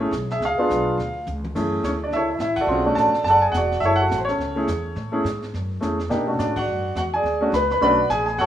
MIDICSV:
0, 0, Header, 1, 5, 480
1, 0, Start_track
1, 0, Key_signature, 3, "minor"
1, 0, Tempo, 284630
1, 693, Time_signature, 4, 2, 24, 8
1, 14267, End_track
2, 0, Start_track
2, 0, Title_t, "Grand piano"
2, 0, Program_c, 0, 0
2, 0, Note_on_c, 0, 57, 62
2, 0, Note_on_c, 0, 73, 81
2, 9, Note_on_c, 0, 61, 61
2, 10, Note_on_c, 0, 64, 57
2, 24, Note_on_c, 0, 68, 67
2, 181, Note_off_c, 0, 73, 0
2, 183, Note_off_c, 0, 57, 0
2, 188, Note_off_c, 0, 61, 0
2, 189, Note_off_c, 0, 64, 0
2, 196, Note_off_c, 0, 68, 0
2, 533, Note_on_c, 0, 76, 85
2, 542, Note_on_c, 0, 68, 61
2, 697, Note_off_c, 0, 76, 0
2, 702, Note_off_c, 0, 68, 0
2, 760, Note_on_c, 0, 77, 89
2, 761, Note_on_c, 0, 68, 68
2, 980, Note_on_c, 0, 59, 66
2, 994, Note_off_c, 0, 68, 0
2, 995, Note_on_c, 0, 62, 63
2, 1002, Note_on_c, 0, 65, 68
2, 1019, Note_on_c, 0, 68, 73
2, 1613, Note_off_c, 0, 59, 0
2, 1621, Note_off_c, 0, 62, 0
2, 1625, Note_off_c, 0, 65, 0
2, 1633, Note_off_c, 0, 68, 0
2, 2098, Note_off_c, 0, 77, 0
2, 2616, Note_on_c, 0, 57, 57
2, 2617, Note_on_c, 0, 61, 51
2, 2626, Note_on_c, 0, 64, 56
2, 2631, Note_on_c, 0, 68, 66
2, 3111, Note_on_c, 0, 73, 76
2, 3121, Note_off_c, 0, 61, 0
2, 3146, Note_on_c, 0, 61, 61
2, 3195, Note_off_c, 0, 73, 0
2, 3231, Note_off_c, 0, 61, 0
2, 3324, Note_off_c, 0, 57, 0
2, 3329, Note_off_c, 0, 64, 0
2, 3331, Note_off_c, 0, 68, 0
2, 3432, Note_on_c, 0, 74, 73
2, 3477, Note_on_c, 0, 62, 57
2, 3586, Note_off_c, 0, 74, 0
2, 3597, Note_on_c, 0, 76, 93
2, 3610, Note_off_c, 0, 62, 0
2, 3643, Note_on_c, 0, 64, 64
2, 3648, Note_on_c, 0, 73, 69
2, 3658, Note_on_c, 0, 69, 61
2, 3852, Note_off_c, 0, 76, 0
2, 3877, Note_off_c, 0, 64, 0
2, 3877, Note_on_c, 0, 76, 61
2, 3880, Note_off_c, 0, 73, 0
2, 3885, Note_off_c, 0, 69, 0
2, 3933, Note_on_c, 0, 64, 58
2, 4040, Note_off_c, 0, 76, 0
2, 4065, Note_on_c, 0, 76, 85
2, 4077, Note_off_c, 0, 64, 0
2, 4117, Note_on_c, 0, 64, 66
2, 4319, Note_on_c, 0, 78, 92
2, 4326, Note_off_c, 0, 76, 0
2, 4354, Note_off_c, 0, 64, 0
2, 4400, Note_on_c, 0, 74, 68
2, 4402, Note_on_c, 0, 66, 67
2, 4402, Note_on_c, 0, 69, 63
2, 4512, Note_on_c, 0, 56, 61
2, 4527, Note_on_c, 0, 60, 63
2, 4531, Note_on_c, 0, 61, 57
2, 4531, Note_on_c, 0, 65, 65
2, 4781, Note_off_c, 0, 56, 0
2, 4789, Note_off_c, 0, 60, 0
2, 4790, Note_off_c, 0, 61, 0
2, 4791, Note_off_c, 0, 65, 0
2, 4808, Note_on_c, 0, 57, 57
2, 4815, Note_off_c, 0, 66, 0
2, 4815, Note_on_c, 0, 61, 52
2, 4828, Note_on_c, 0, 62, 56
2, 4840, Note_on_c, 0, 66, 62
2, 4953, Note_off_c, 0, 78, 0
2, 4980, Note_on_c, 0, 81, 91
2, 4997, Note_off_c, 0, 74, 0
2, 4998, Note_off_c, 0, 69, 0
2, 5051, Note_on_c, 0, 74, 67
2, 5057, Note_on_c, 0, 69, 65
2, 5236, Note_off_c, 0, 57, 0
2, 5240, Note_off_c, 0, 61, 0
2, 5246, Note_off_c, 0, 62, 0
2, 5252, Note_off_c, 0, 66, 0
2, 5445, Note_off_c, 0, 81, 0
2, 5471, Note_on_c, 0, 81, 101
2, 5479, Note_off_c, 0, 74, 0
2, 5482, Note_off_c, 0, 69, 0
2, 5558, Note_on_c, 0, 69, 70
2, 5562, Note_on_c, 0, 78, 79
2, 5571, Note_on_c, 0, 74, 74
2, 5748, Note_off_c, 0, 81, 0
2, 5759, Note_on_c, 0, 80, 80
2, 5795, Note_off_c, 0, 69, 0
2, 5797, Note_off_c, 0, 78, 0
2, 5802, Note_off_c, 0, 74, 0
2, 5847, Note_on_c, 0, 68, 58
2, 5931, Note_on_c, 0, 78, 92
2, 5948, Note_off_c, 0, 80, 0
2, 5994, Note_off_c, 0, 68, 0
2, 6023, Note_on_c, 0, 66, 66
2, 6029, Note_on_c, 0, 74, 67
2, 6415, Note_on_c, 0, 76, 100
2, 6446, Note_off_c, 0, 66, 0
2, 6447, Note_off_c, 0, 78, 0
2, 6449, Note_off_c, 0, 74, 0
2, 6497, Note_on_c, 0, 64, 74
2, 6498, Note_on_c, 0, 73, 80
2, 6499, Note_on_c, 0, 69, 72
2, 6672, Note_on_c, 0, 78, 101
2, 6731, Note_off_c, 0, 76, 0
2, 6739, Note_off_c, 0, 69, 0
2, 6744, Note_off_c, 0, 64, 0
2, 6745, Note_off_c, 0, 73, 0
2, 6763, Note_on_c, 0, 66, 71
2, 6765, Note_on_c, 0, 69, 61
2, 7018, Note_off_c, 0, 78, 0
2, 7046, Note_on_c, 0, 72, 59
2, 7067, Note_off_c, 0, 66, 0
2, 7068, Note_off_c, 0, 69, 0
2, 7163, Note_on_c, 0, 73, 91
2, 7205, Note_off_c, 0, 72, 0
2, 7237, Note_on_c, 0, 69, 54
2, 7240, Note_on_c, 0, 61, 52
2, 7668, Note_off_c, 0, 61, 0
2, 7684, Note_on_c, 0, 57, 55
2, 7693, Note_on_c, 0, 61, 64
2, 7711, Note_on_c, 0, 64, 58
2, 7712, Note_on_c, 0, 68, 71
2, 7865, Note_off_c, 0, 57, 0
2, 7870, Note_off_c, 0, 61, 0
2, 7879, Note_off_c, 0, 64, 0
2, 7879, Note_off_c, 0, 68, 0
2, 8631, Note_on_c, 0, 57, 61
2, 8644, Note_on_c, 0, 61, 64
2, 8648, Note_on_c, 0, 64, 60
2, 8652, Note_on_c, 0, 68, 73
2, 8819, Note_off_c, 0, 57, 0
2, 8826, Note_off_c, 0, 61, 0
2, 8828, Note_off_c, 0, 64, 0
2, 8830, Note_off_c, 0, 68, 0
2, 9046, Note_off_c, 0, 73, 0
2, 9083, Note_off_c, 0, 69, 0
2, 9791, Note_on_c, 0, 57, 60
2, 9796, Note_on_c, 0, 61, 49
2, 9807, Note_on_c, 0, 64, 45
2, 9816, Note_on_c, 0, 68, 63
2, 10062, Note_off_c, 0, 57, 0
2, 10065, Note_off_c, 0, 61, 0
2, 10070, Note_off_c, 0, 64, 0
2, 10075, Note_off_c, 0, 68, 0
2, 10277, Note_on_c, 0, 58, 63
2, 10287, Note_on_c, 0, 62, 53
2, 10296, Note_on_c, 0, 63, 59
2, 10299, Note_on_c, 0, 67, 68
2, 10545, Note_off_c, 0, 58, 0
2, 10550, Note_off_c, 0, 62, 0
2, 10555, Note_off_c, 0, 63, 0
2, 10556, Note_off_c, 0, 67, 0
2, 10572, Note_on_c, 0, 57, 51
2, 10580, Note_on_c, 0, 61, 51
2, 10581, Note_on_c, 0, 62, 55
2, 10600, Note_on_c, 0, 66, 60
2, 10778, Note_on_c, 0, 74, 77
2, 10795, Note_off_c, 0, 62, 0
2, 10820, Note_on_c, 0, 62, 57
2, 11000, Note_off_c, 0, 57, 0
2, 11005, Note_off_c, 0, 61, 0
2, 11014, Note_off_c, 0, 66, 0
2, 11067, Note_off_c, 0, 62, 0
2, 11073, Note_off_c, 0, 74, 0
2, 11073, Note_on_c, 0, 78, 89
2, 11104, Note_on_c, 0, 74, 54
2, 11113, Note_on_c, 0, 66, 67
2, 11694, Note_off_c, 0, 78, 0
2, 11711, Note_off_c, 0, 74, 0
2, 11715, Note_off_c, 0, 66, 0
2, 11751, Note_on_c, 0, 78, 92
2, 11774, Note_on_c, 0, 66, 66
2, 11835, Note_off_c, 0, 78, 0
2, 11859, Note_off_c, 0, 66, 0
2, 12034, Note_on_c, 0, 80, 89
2, 12069, Note_on_c, 0, 74, 63
2, 12070, Note_on_c, 0, 68, 66
2, 12492, Note_on_c, 0, 57, 59
2, 12492, Note_on_c, 0, 61, 63
2, 12509, Note_on_c, 0, 62, 57
2, 12518, Note_on_c, 0, 66, 71
2, 12655, Note_off_c, 0, 80, 0
2, 12671, Note_off_c, 0, 57, 0
2, 12671, Note_off_c, 0, 61, 0
2, 12674, Note_off_c, 0, 68, 0
2, 12674, Note_off_c, 0, 74, 0
2, 12680, Note_off_c, 0, 62, 0
2, 12684, Note_off_c, 0, 66, 0
2, 12714, Note_on_c, 0, 83, 93
2, 12747, Note_on_c, 0, 71, 81
2, 12974, Note_off_c, 0, 83, 0
2, 12992, Note_off_c, 0, 71, 0
2, 13010, Note_on_c, 0, 83, 93
2, 13053, Note_on_c, 0, 71, 78
2, 13167, Note_off_c, 0, 83, 0
2, 13171, Note_on_c, 0, 57, 69
2, 13178, Note_on_c, 0, 61, 68
2, 13181, Note_on_c, 0, 62, 65
2, 13188, Note_off_c, 0, 71, 0
2, 13193, Note_on_c, 0, 83, 107
2, 13197, Note_on_c, 0, 66, 70
2, 13213, Note_on_c, 0, 71, 82
2, 13216, Note_on_c, 0, 74, 70
2, 13216, Note_on_c, 0, 78, 69
2, 13433, Note_off_c, 0, 57, 0
2, 13437, Note_off_c, 0, 61, 0
2, 13438, Note_off_c, 0, 62, 0
2, 13446, Note_off_c, 0, 66, 0
2, 13643, Note_off_c, 0, 71, 0
2, 13644, Note_off_c, 0, 74, 0
2, 13644, Note_off_c, 0, 78, 0
2, 13661, Note_on_c, 0, 80, 97
2, 13679, Note_off_c, 0, 83, 0
2, 13686, Note_on_c, 0, 68, 73
2, 13906, Note_off_c, 0, 80, 0
2, 13931, Note_on_c, 0, 80, 84
2, 13940, Note_off_c, 0, 68, 0
2, 13970, Note_on_c, 0, 68, 67
2, 14116, Note_off_c, 0, 80, 0
2, 14137, Note_off_c, 0, 68, 0
2, 14142, Note_on_c, 0, 78, 102
2, 14171, Note_on_c, 0, 69, 83
2, 14178, Note_on_c, 0, 66, 71
2, 14183, Note_on_c, 0, 73, 82
2, 14267, Note_off_c, 0, 66, 0
2, 14267, Note_off_c, 0, 69, 0
2, 14267, Note_off_c, 0, 73, 0
2, 14267, Note_off_c, 0, 78, 0
2, 14267, End_track
3, 0, Start_track
3, 0, Title_t, "Upright bass"
3, 0, Program_c, 1, 32
3, 0, Note_on_c, 1, 33, 86
3, 180, Note_off_c, 1, 33, 0
3, 190, Note_on_c, 1, 35, 85
3, 667, Note_off_c, 1, 35, 0
3, 676, Note_on_c, 1, 37, 87
3, 951, Note_off_c, 1, 37, 0
3, 1173, Note_on_c, 1, 35, 89
3, 1638, Note_off_c, 1, 35, 0
3, 1647, Note_on_c, 1, 38, 81
3, 2115, Note_off_c, 1, 38, 0
3, 2150, Note_on_c, 1, 37, 86
3, 2607, Note_off_c, 1, 37, 0
3, 2619, Note_on_c, 1, 42, 80
3, 3081, Note_off_c, 1, 42, 0
3, 3088, Note_on_c, 1, 38, 85
3, 3544, Note_off_c, 1, 38, 0
3, 3555, Note_on_c, 1, 37, 80
3, 4016, Note_off_c, 1, 37, 0
3, 4027, Note_on_c, 1, 33, 84
3, 4489, Note_off_c, 1, 33, 0
3, 4499, Note_on_c, 1, 35, 86
3, 4969, Note_off_c, 1, 35, 0
3, 4979, Note_on_c, 1, 33, 90
3, 5262, Note_off_c, 1, 33, 0
3, 5454, Note_on_c, 1, 30, 80
3, 5938, Note_off_c, 1, 30, 0
3, 5946, Note_on_c, 1, 28, 88
3, 6420, Note_off_c, 1, 28, 0
3, 6430, Note_on_c, 1, 30, 82
3, 6895, Note_off_c, 1, 30, 0
3, 6905, Note_on_c, 1, 33, 88
3, 7384, Note_off_c, 1, 33, 0
3, 7393, Note_on_c, 1, 37, 85
3, 7869, Note_off_c, 1, 37, 0
3, 7885, Note_on_c, 1, 40, 91
3, 8355, Note_off_c, 1, 40, 0
3, 8363, Note_on_c, 1, 45, 86
3, 8834, Note_off_c, 1, 45, 0
3, 8842, Note_on_c, 1, 44, 91
3, 9314, Note_off_c, 1, 44, 0
3, 9339, Note_on_c, 1, 42, 86
3, 9803, Note_off_c, 1, 42, 0
3, 9826, Note_on_c, 1, 40, 91
3, 10286, Note_off_c, 1, 40, 0
3, 10296, Note_on_c, 1, 47, 87
3, 10761, Note_off_c, 1, 47, 0
3, 10773, Note_on_c, 1, 44, 96
3, 11240, Note_off_c, 1, 44, 0
3, 11257, Note_on_c, 1, 42, 74
3, 11717, Note_off_c, 1, 42, 0
3, 11728, Note_on_c, 1, 40, 92
3, 12190, Note_off_c, 1, 40, 0
3, 12200, Note_on_c, 1, 38, 86
3, 12674, Note_off_c, 1, 38, 0
3, 12685, Note_on_c, 1, 37, 94
3, 13156, Note_off_c, 1, 37, 0
3, 13170, Note_on_c, 1, 35, 82
3, 13639, Note_off_c, 1, 35, 0
3, 13655, Note_on_c, 1, 33, 87
3, 14121, Note_off_c, 1, 33, 0
3, 14132, Note_on_c, 1, 30, 90
3, 14267, Note_off_c, 1, 30, 0
3, 14267, End_track
4, 0, Start_track
4, 0, Title_t, "Muted upright bass strokes"
4, 989, Note_on_c, 9, 29, 37
4, 1158, Note_off_c, 9, 29, 0
4, 5271, Note_on_c, 9, 29, 39
4, 5439, Note_off_c, 9, 29, 0
4, 14267, End_track
5, 0, Start_track
5, 0, Title_t, "Drums"
5, 205, Note_on_c, 9, 44, 52
5, 209, Note_on_c, 9, 38, 61
5, 374, Note_off_c, 9, 44, 0
5, 377, Note_off_c, 9, 38, 0
5, 513, Note_on_c, 9, 38, 40
5, 682, Note_off_c, 9, 38, 0
5, 699, Note_on_c, 9, 25, 43
5, 699, Note_on_c, 9, 38, 43
5, 867, Note_off_c, 9, 38, 0
5, 1184, Note_on_c, 9, 44, 58
5, 1188, Note_on_c, 9, 38, 61
5, 1353, Note_off_c, 9, 44, 0
5, 1356, Note_off_c, 9, 38, 0
5, 1671, Note_off_c, 9, 25, 0
5, 1671, Note_on_c, 9, 25, 45
5, 1671, Note_on_c, 9, 38, 40
5, 1840, Note_off_c, 9, 38, 0
5, 2132, Note_on_c, 9, 44, 51
5, 2135, Note_on_c, 9, 47, 50
5, 2301, Note_off_c, 9, 44, 0
5, 2304, Note_off_c, 9, 47, 0
5, 2436, Note_on_c, 9, 47, 65
5, 2604, Note_off_c, 9, 47, 0
5, 2625, Note_off_c, 9, 25, 0
5, 2625, Note_on_c, 9, 25, 49
5, 2625, Note_on_c, 9, 36, 70
5, 2625, Note_on_c, 9, 38, 39
5, 2625, Note_on_c, 9, 49, 74
5, 2793, Note_off_c, 9, 36, 0
5, 2794, Note_off_c, 9, 38, 0
5, 2794, Note_off_c, 9, 49, 0
5, 3099, Note_on_c, 9, 44, 56
5, 3102, Note_on_c, 9, 38, 58
5, 3268, Note_off_c, 9, 44, 0
5, 3271, Note_off_c, 9, 38, 0
5, 3575, Note_off_c, 9, 25, 0
5, 3575, Note_on_c, 9, 25, 49
5, 3575, Note_on_c, 9, 38, 38
5, 3744, Note_off_c, 9, 38, 0
5, 4039, Note_on_c, 9, 44, 51
5, 4043, Note_on_c, 9, 38, 60
5, 4208, Note_off_c, 9, 44, 0
5, 4211, Note_off_c, 9, 38, 0
5, 4316, Note_on_c, 9, 51, 73
5, 4335, Note_on_c, 9, 36, 74
5, 4485, Note_off_c, 9, 51, 0
5, 4503, Note_off_c, 9, 36, 0
5, 4523, Note_off_c, 9, 25, 0
5, 4523, Note_on_c, 9, 25, 46
5, 5015, Note_on_c, 9, 44, 47
5, 5018, Note_on_c, 9, 38, 60
5, 5184, Note_off_c, 9, 44, 0
5, 5187, Note_off_c, 9, 38, 0
5, 5297, Note_on_c, 9, 38, 35
5, 5466, Note_off_c, 9, 38, 0
5, 5496, Note_off_c, 9, 25, 0
5, 5496, Note_on_c, 9, 25, 52
5, 5496, Note_on_c, 9, 38, 37
5, 5665, Note_off_c, 9, 38, 0
5, 5971, Note_on_c, 9, 44, 65
5, 5974, Note_on_c, 9, 38, 64
5, 6139, Note_off_c, 9, 44, 0
5, 6143, Note_off_c, 9, 38, 0
5, 6264, Note_on_c, 9, 38, 36
5, 6433, Note_off_c, 9, 38, 0
5, 6451, Note_off_c, 9, 25, 0
5, 6451, Note_on_c, 9, 25, 43
5, 6451, Note_on_c, 9, 38, 42
5, 6620, Note_off_c, 9, 38, 0
5, 6930, Note_on_c, 9, 44, 60
5, 6933, Note_on_c, 9, 38, 55
5, 7099, Note_off_c, 9, 44, 0
5, 7102, Note_off_c, 9, 38, 0
5, 7221, Note_on_c, 9, 38, 37
5, 7390, Note_off_c, 9, 38, 0
5, 7426, Note_off_c, 9, 25, 0
5, 7426, Note_on_c, 9, 25, 44
5, 7426, Note_on_c, 9, 38, 43
5, 7594, Note_off_c, 9, 38, 0
5, 7886, Note_on_c, 9, 44, 62
5, 7889, Note_on_c, 9, 38, 60
5, 8055, Note_off_c, 9, 44, 0
5, 8058, Note_off_c, 9, 38, 0
5, 8370, Note_off_c, 9, 25, 0
5, 8370, Note_on_c, 9, 25, 44
5, 8370, Note_on_c, 9, 38, 42
5, 8539, Note_off_c, 9, 38, 0
5, 8864, Note_on_c, 9, 44, 55
5, 8867, Note_on_c, 9, 38, 63
5, 9033, Note_off_c, 9, 44, 0
5, 9036, Note_off_c, 9, 38, 0
5, 9148, Note_on_c, 9, 38, 35
5, 9316, Note_off_c, 9, 38, 0
5, 9350, Note_off_c, 9, 25, 0
5, 9350, Note_on_c, 9, 25, 41
5, 9350, Note_on_c, 9, 38, 41
5, 9518, Note_off_c, 9, 38, 0
5, 9818, Note_on_c, 9, 44, 50
5, 9821, Note_on_c, 9, 38, 58
5, 9986, Note_off_c, 9, 44, 0
5, 9990, Note_off_c, 9, 38, 0
5, 10109, Note_on_c, 9, 38, 37
5, 10278, Note_off_c, 9, 38, 0
5, 10294, Note_off_c, 9, 25, 0
5, 10294, Note_on_c, 9, 25, 47
5, 10294, Note_on_c, 9, 38, 46
5, 10463, Note_off_c, 9, 38, 0
5, 10781, Note_on_c, 9, 44, 61
5, 10785, Note_on_c, 9, 38, 61
5, 10950, Note_off_c, 9, 44, 0
5, 10954, Note_off_c, 9, 38, 0
5, 11060, Note_on_c, 9, 51, 74
5, 11067, Note_on_c, 9, 36, 73
5, 11229, Note_off_c, 9, 51, 0
5, 11236, Note_off_c, 9, 36, 0
5, 11269, Note_off_c, 9, 25, 0
5, 11269, Note_on_c, 9, 25, 39
5, 11738, Note_on_c, 9, 44, 54
5, 11742, Note_on_c, 9, 38, 57
5, 11907, Note_off_c, 9, 44, 0
5, 11910, Note_off_c, 9, 38, 0
5, 12235, Note_off_c, 9, 25, 0
5, 12235, Note_on_c, 9, 25, 45
5, 12235, Note_on_c, 9, 38, 42
5, 12404, Note_off_c, 9, 38, 0
5, 12705, Note_on_c, 9, 44, 61
5, 12708, Note_on_c, 9, 38, 67
5, 12873, Note_off_c, 9, 44, 0
5, 12877, Note_off_c, 9, 38, 0
5, 12993, Note_on_c, 9, 38, 32
5, 13162, Note_off_c, 9, 38, 0
5, 13200, Note_off_c, 9, 25, 0
5, 13200, Note_on_c, 9, 25, 48
5, 13200, Note_on_c, 9, 38, 38
5, 13368, Note_off_c, 9, 38, 0
5, 13662, Note_on_c, 9, 44, 51
5, 13665, Note_on_c, 9, 38, 64
5, 13830, Note_off_c, 9, 44, 0
5, 13834, Note_off_c, 9, 38, 0
5, 13956, Note_on_c, 9, 38, 34
5, 14125, Note_off_c, 9, 38, 0
5, 14142, Note_off_c, 9, 25, 0
5, 14142, Note_on_c, 9, 25, 44
5, 14142, Note_on_c, 9, 38, 48
5, 14267, Note_off_c, 9, 25, 0
5, 14267, Note_off_c, 9, 38, 0
5, 14267, End_track
0, 0, End_of_file